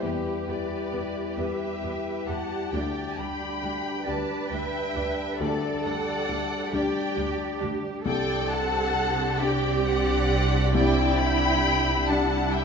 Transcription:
0.00 1.34 E2 soft
0.00 0.11 E2 soft
0.00 2.69 G3 soft
0.00 0.09 B3 soft
0.00 2.69 E4 soft
0.00 0.47 G4 medium
0.00 0.10 G4 soft
0.00 4.07 G4 soft
0.00 0.47 B4 medium
0.47 0.55 E2 soft
0.47 0.56 B3 soft
0.47 0.56 G4 soft
0.47 1.36 B4 medium
0.47 1.39 D5 medium
0.92 1.01 E2 soft
0.92 1.00 B3 soft
0.92 1.00 G4 soft
1.37 1.46 E2 soft
1.37 2.68 G3 soft
1.37 1.45 B3 soft
1.37 1.45 G4 soft
1.37 2.69 G4 soft
1.37 2.26 B4 soft
1.37 2.69 B4 soft
1.37 2.29 E5 medium
1.82 1.90 E2 soft
1.82 1.91 B3 soft
1.82 1.91 G4 soft
2.27 2.35 E2 soft
2.27 2.36 B3 soft
2.27 2.36 G4 soft
2.27 2.72 F#5 medium
2.27 2.74 A5 medium
2.72 2.80 D2 soft
2.72 4.03 D2 soft
2.72 7.88 G3 soft
2.72 2.81 G3 soft
2.72 7.88 D4 medium
2.72 2.81 D4 soft
2.72 3.19 D5 soft
2.72 3.19 G5 medium
3.18 3.26 D2 soft
3.18 3.26 G3 soft
3.18 3.26 D4 soft
3.18 4.06 G5 medium
3.18 4.07 B5 medium
3.62 3.70 D2 soft
3.62 3.70 G3 soft
3.62 3.70 D4 soft
4.05 4.15 D2 medium
4.05 5.36 G3 soft
4.05 4.14 G3 soft
4.05 5.36 D4 soft
4.05 4.14 D4 soft
4.05 5.37 B4 medium
4.05 5.36 D5 soft
4.05 4.51 D5 medium
4.05 4.52 A5 medium
4.50 4.59 D2 soft
4.50 4.58 G3 soft
4.50 4.58 D4 soft
4.50 5.41 E5 medium
4.50 5.38 G5 medium
4.95 5.04 D2 medium
4.95 5.03 G3 soft
4.95 5.03 D4 soft
5.40 6.69 D2 medium
5.40 5.48 D2 medium
5.40 5.48 G3 soft
5.40 5.49 D4 soft
5.40 6.73 A4 medium
5.40 5.84 A4 medium
5.40 5.84 D5 medium
5.85 5.93 D2 soft
5.85 5.93 G3 soft
5.85 5.93 D4 soft
5.85 6.73 D5 medium
5.85 6.73 F#5 medium
6.28 6.37 D2 medium
6.28 6.36 G3 soft
6.28 6.36 D4 medium
6.72 6.81 D2 medium
6.72 6.81 G3 medium
6.72 8.03 G3 soft
6.72 6.80 D4 soft
6.72 8.03 D4 soft
6.72 8.06 G4 medium
6.72 8.03 D5 soft
6.72 7.61 D5 medium
6.72 7.63 G5 medium
7.16 7.26 D2 medium
7.16 7.25 G3 soft
7.16 7.24 D4 soft
7.60 7.70 D2 medium
7.60 7.68 G3 medium
7.60 7.68 D4 medium
8.05 9.36 C2 medium
8.05 12.64 C2 medium
8.05 12.64 G3 medium
8.05 12.04 C4 medium
8.05 12.64 D4 medium
8.05 10.70 G4 medium
8.05 9.37 A4 medium
8.05 8.49 D5 medium
8.05 8.49 G5 medium
8.50 9.40 F#5 medium
8.50 9.40 A5 medium
9.40 10.71 G3 soft
9.40 10.71 D4 soft
9.40 10.75 G4 medium
9.40 9.85 D5 medium
9.40 10.71 D5 medium
9.40 9.85 G5 medium
9.87 10.74 D5 medium
9.87 10.76 F#5 medium
10.73 12.05 C2 medium
10.73 12.06 E4 medium
10.73 12.64 E4 medium
10.73 11.19 D5 medium
10.73 11.18 G5 loud
11.19 12.09 G5 medium
11.19 12.08 B5 loud
12.08 12.64 G3 medium
12.08 12.64 D4 medium
12.08 12.64 D4 soft
12.08 12.64 D5 medium
12.08 12.55 F#5 medium
12.08 12.54 A5 medium
12.53 12.64 E5 medium
12.53 12.64 G5 loud

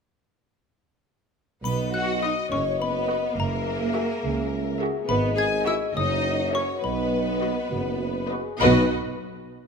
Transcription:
1.64 2.35 B1 medium
1.64 2.36 B1 medium
1.64 1.92 B3 medium
1.64 3.34 F#4 soft
1.64 1.92 B4 soft
1.64 3.35 D#5 soft
1.64 1.92 B5 soft
1.64 triangle soft
1.93 2.22 F#4 medium
1.93 2.22 F#5 soft
1.93 2.21 F#6 soft
2.22 2.31 D#4 medium
2.22 2.45 F#4 soft
2.22 2.45 B4 soft
2.22 2.52 D#5 soft
2.22 2.45 D#5 soft
2.22 2.50 D#6 soft
2.51 3.21 F#1 medium
2.51 2.60 C#4 medium
2.51 2.80 C#5 medium
2.51 2.79 C#6 soft
2.81 3.37 B3 medium
2.81 3.37 B4 medium
2.81 3.35 B5 soft
3.09 3.31 F#4 soft
3.09 3.31 B4 soft
3.09 3.31 D#5 soft
3.37 4.07 F#1 medium
3.37 4.80 A#3 medium
3.37 5.92 G#4 medium
3.37 4.77 A#4 medium
3.37 5.09 E5 medium
3.37 4.77 A#5 medium
3.95 4.16 F#4 medium
3.95 4.16 G#4 soft
3.95 4.17 E5 medium
4.24 4.92 C#2 medium
4.81 5.02 F#4 medium
4.81 5.02 G#4 medium
4.81 5.02 E5 medium
5.08 5.79 G#1 medium
5.08 5.35 B3 medium
5.08 5.17 B4 medium
5.08 5.94 D#5 medium
5.08 5.35 B5 medium
5.37 5.45 G#4 medium
5.37 5.66 G#5 medium
5.37 5.65 G#6 medium
5.65 5.73 E4 medium
5.65 5.88 F#4 medium
5.65 5.88 G#4 medium
5.65 5.88 D#5 medium
5.65 5.74 E5 medium
5.65 5.94 E6 medium
5.95 6.66 F#1 medium
5.95 6.52 D#4 medium
5.95 7.67 F#4 medium
5.95 6.84 C#5 medium
5.95 6.52 D#5 medium
5.95 6.51 D#6 medium
6.52 6.61 C#4 medium
6.52 6.76 F#4 medium
6.52 6.76 A#4 medium
6.52 6.83 C#5 medium
6.52 6.75 E5 medium
6.52 6.82 C#6 medium
6.83 7.55 B1 medium
6.83 8.28 B3 medium
6.83 8.28 B4 medium
6.83 7.66 D#5 soft
6.83 8.28 B5 soft
7.41 7.64 F#4 soft
7.41 7.64 B4 soft
7.41 7.64 D#5 medium
7.71 8.43 F#1 medium
7.71 8.44 F#1 medium
7.71 7.99 F#4 medium
8.01 8.30 B4 medium
8.30 8.53 F#4 medium
8.30 8.60 G#4 medium
8.30 8.53 B4 medium
8.30 8.53 D#5 medium
8.60 8.93 B1 medium
8.60 8.86 B1 medium
8.60 8.93 B3 medium
8.60 8.85 D#4 medium
8.60 8.93 F#4 medium
8.60 8.93 B4 medium
8.60 8.85 B4 medium
8.60 8.93 B4 medium
8.60 8.93 D#5 medium
8.60 8.93 B5 medium

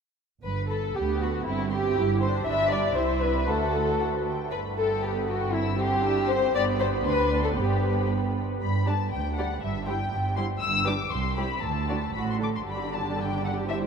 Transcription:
0.43 0.86 G1 soft
0.43 0.87 G2 soft
0.43 0.68 B4 medium
0.69 0.95 A4 medium
0.69 0.77 B5 soft
0.95 1.38 D2 soft
0.95 1.43 B3 soft
0.95 1.21 G4 medium
1.22 1.47 F#4 medium
1.22 1.30 B5 soft
1.46 1.88 G1 medium
1.46 1.88 G2 medium
1.46 1.96 C4 medium
1.46 1.71 E4 medium
1.71 2.21 G4 medium
1.71 1.79 C6 soft
1.96 2.38 G1 medium
1.96 2.38 G2 medium
1.96 2.21 E4 soft
2.21 2.97 D4 medium
2.21 2.46 C5 medium
2.21 2.29 C6 soft
2.46 2.93 G1 medium
2.46 2.93 G2 medium
2.46 2.71 E5 medium
2.46 2.93 B5 medium
2.71 2.96 D5 medium
2.96 3.47 C2 medium
2.96 3.48 C2 medium
2.96 3.47 E4 soft
2.96 3.22 C5 medium
2.96 3.48 E5 soft
3.22 3.48 B4 medium
3.47 4.31 D2 soft
3.47 4.32 D2 soft
3.47 4.24 F#4 soft
3.47 4.26 A4 medium
3.47 3.94 F#5 soft
3.99 4.07 F#5 soft
4.27 4.52 G5 soft
4.51 6.50 G1 soft
4.51 6.50 G2 soft
4.51 4.59 B4 medium
4.51 4.75 B5 soft
4.78 5.03 A4 medium
4.78 5.04 G5 soft
5.03 5.50 B3 soft
5.03 5.29 G4 medium
5.03 5.29 B5 soft
5.29 5.54 F#4 medium
5.29 5.54 G5 soft
5.54 6.04 C4 soft
5.54 5.79 E4 medium
5.54 5.78 E6 soft
5.80 6.28 G4 medium
5.80 6.05 C6 soft
6.04 6.29 D4 medium
6.04 6.29 E6 soft
6.27 6.54 C4 medium
6.27 6.54 C5 medium
6.27 6.53 C6 soft
6.54 7.01 G1 medium
6.54 7.01 G2 medium
6.54 7.04 B3 medium
6.54 6.63 D5 medium
6.54 7.00 B5 medium
6.80 6.88 C5 medium
7.04 7.56 D2 medium
7.04 7.56 D4 medium
7.04 7.42 B4 medium
7.04 7.56 C6 medium
7.44 7.49 A4 medium
7.56 8.41 G1 soft
7.56 8.41 G2 soft
7.56 8.34 B3 soft
7.56 8.07 G4 soft
7.56 8.40 B5 soft
8.61 9.03 G1 medium
8.61 9.03 G2 medium
8.61 8.85 B5 medium
8.86 8.95 G3 soft
8.86 8.95 D4 soft
8.86 8.94 G4 soft
8.86 8.95 D5 soft
8.86 9.11 A5 medium
9.10 9.53 D2 medium
9.10 9.53 D2 soft
9.10 9.35 G5 medium
9.36 9.46 G3 soft
9.36 9.46 D4 soft
9.36 9.46 G4 soft
9.36 9.46 D5 soft
9.36 9.61 F#5 medium
9.62 10.03 G1 medium
9.62 10.03 G2 medium
9.62 9.86 E5 medium
9.86 9.96 G3 soft
9.86 9.96 E4 soft
9.86 9.95 G4 soft
9.86 9.95 C5 soft
9.86 10.35 G5 medium
10.12 10.53 G1 medium
10.12 10.53 G2 medium
10.36 10.45 G3 soft
10.36 10.45 E4 soft
10.36 10.44 G4 soft
10.36 10.45 C5 soft
10.36 10.44 C6 medium
10.61 11.03 G1 medium
10.61 11.03 G2 medium
10.61 10.85 E6 medium
10.85 10.95 G3 medium
10.85 10.95 D4 soft
10.85 10.93 G4 soft
10.85 10.93 B4 medium
10.85 11.11 D6 medium
11.11 11.54 C2 medium
11.11 11.37 C6 medium
11.36 11.46 G3 soft
11.36 11.46 E4 soft
11.36 11.45 G4 soft
11.36 11.45 C5 soft
11.36 11.62 B5 medium
11.62 12.06 D2 medium
11.62 12.14 A5 medium
11.89 11.97 D3 soft
11.89 11.97 D4 soft
11.89 11.97 F#4 soft
11.89 11.97 D5 soft
12.14 12.58 A1 soft
12.14 12.58 A2 soft
12.14 12.39 F#4 soft
12.14 12.27 B5 medium
12.30 12.35 C6 medium
12.40 12.48 D3 soft
12.40 12.48 D4 soft
12.40 12.48 A4 soft
12.40 12.47 D6 medium
12.55 12.60 C6 soft
12.66 13.87 G1 medium
12.66 13.87 G2 soft
12.66 13.65 D3 soft
12.66 13.65 D4 soft
12.66 13.87 G4 soft
12.66 13.65 D5 soft
12.66 12.93 B5 medium
12.93 13.18 A5 medium
13.20 13.45 G5 medium
13.45 13.53 F#5 medium
13.68 13.87 G3 medium
13.68 13.87 E4 soft
13.68 13.87 C5 medium
13.68 13.76 E5 medium

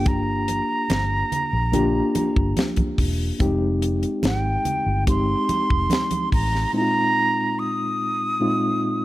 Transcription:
0.00 0.60 G1 medium
0.00 1.00 A#3 medium
0.00 0.97 D4 medium
0.00 0.98 F4 medium
0.00 0.98 G4 medium
0.06 2.57 A#5 medium
0.06 kick loud
0.06 closed hi-hat medium
0.06 muted conga soft
0.48 closed hi-hat medium
0.48 muted conga soft
0.90 1.22 G1 medium
0.90 snare loud
0.90 closed hi-hat medium
0.90 high conga medium
1.32 closed hi-hat medium
1.32 low conga medium
1.53 2.00 A#1 medium
1.72 2.79 A#3 medium
1.72 2.79 D4 medium
1.72 2.80 F4 medium
1.72 2.80 G4 medium
1.72 closed hi-hat medium
1.72 muted conga soft
1.72 low conga medium
2.15 muted fingered electric bass stroke soft
2.15 closed hi-hat medium
2.15 muted conga medium
2.36 2.52 G1 medium
2.36 kick medium
2.57 snare medium
2.57 closed hi-hat medium
2.57 high conga medium
2.76 kick medium
2.76 closed hi-hat medium
2.76 high conga medium
2.98 3.30 E1 medium
2.98 kick medium
2.98 open hi-hat medium
3.39 4.04 F1 medium
3.39 4.46 G#3 medium
3.39 4.46 C4 medium
3.39 4.47 D#4 medium
3.39 4.47 G4 medium
3.39 kick loud
3.39 closed hi-hat medium
3.39 muted conga soft
3.82 closed hi-hat medium
4.03 closed hi-hat soft
4.23 4.56 G#1 medium
4.23 5.05 G5 medium
4.23 snare loud
4.23 closed hi-hat medium
4.23 high conga medium
4.65 closed hi-hat medium
4.65 low conga medium
4.86 5.34 G1 medium
5.07 6.13 G#3 medium
5.07 6.13 C4 medium
5.07 6.14 D#4 medium
5.07 6.14 G4 medium
5.07 6.29 C6 loud
5.07 kick medium
5.07 closed hi-hat medium
5.07 muted conga soft
5.49 muted fingered electric bass stroke soft
5.49 closed hi-hat medium
5.49 muted conga medium
5.70 5.86 F1 medium
5.70 kick medium
5.90 snare medium
5.90 closed hi-hat medium
5.90 high conga medium
6.11 closed hi-hat medium
6.11 high conga medium
6.32 6.64 A1 medium
6.32 6.72 A#5 medium
6.32 kick medium
6.32 open hi-hat medium
6.55 snare soft
6.73 7.80 A#2 medium
6.73 7.80 G#3 medium
6.73 7.80 C4 medium
6.73 7.80 D#4 medium
6.73 6.81 E4 medium
6.73 7.61 A#5 loud
6.81 7.84 F4 medium
7.59 9.05 D#6 medium
8.40 9.05 A#2 medium
8.40 9.05 G#3 medium
8.40 9.05 C4 medium
8.40 9.05 D#4 medium
8.40 9.05 F4 medium

